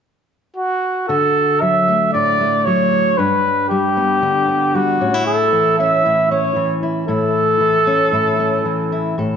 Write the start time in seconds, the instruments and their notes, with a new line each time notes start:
0.57 trumpet F#4
1.08 steel-string acoustic guitar D3 F#4, trumpet A4
1.61 steel-string acoustic guitar F#3, trumpet E5
1.88 steel-string acoustic guitar A3
2.13 steel-string acoustic guitar A2 D4, trumpet D5
2.41 steel-string acoustic guitar A3
2.65 steel-string acoustic guitar F#3, trumpet C#5
2.93 steel-string acoustic guitar D4
3.18 steel-string acoustic guitar G2 D4, trumpet B4
3.69 steel-string acoustic guitar G3, trumpet G4
3.97 steel-string acoustic guitar B3
4.22 steel-string acoustic guitar D3 D4
4.48 steel-string acoustic guitar B3
4.75 steel-string acoustic guitar G3, trumpet F#4
5.01 steel-string acoustic guitar A2 C#4
5.14 steel-string acoustic guitar E4
5.27 trumpet A4
5.53 steel-string acoustic guitar E3
5.79 steel-string acoustic guitar C#4, trumpet E5
6.05 steel-string acoustic guitar A2 E4
6.31 steel-string acoustic guitar C#4, trumpet C#5
6.56 steel-string acoustic guitar E3
6.83 steel-string acoustic guitar E4
7.08 steel-string acoustic guitar A2 E4, trumpet A4
7.61 steel-string acoustic guitar E3
7.87 steel-string acoustic guitar C#4
8.12 steel-string acoustic guitar A2 E4
8.39 steel-string acoustic guitar C#4
8.65 steel-string acoustic guitar E3
8.92 steel-string acoustic guitar E4
9.18 steel-string acoustic guitar A2 A4